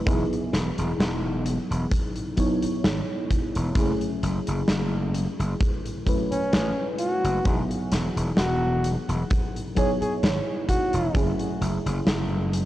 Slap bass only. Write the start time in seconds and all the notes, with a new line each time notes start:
0.07 E1
0.53 E1
0.78 E1
0.99 E1
1.71 E1
2.63 muted slap bass stroke
2.84 G#1
3.56 E1
3.75 F#1
4.23 F#1
4.48 F#1
4.69 F#1
5.39 F#1
6.32 muted slap bass stroke
6.53 A1
7.24 F#1
7.46 E1
7.91 E1
8.16 E1
8.38 E1
9.09 E1
10.01 muted slap bass stroke
10.23 G#1
10.94 E1
11.15 F#1
11.61 F#1
11.86 F#1
12.07 F#1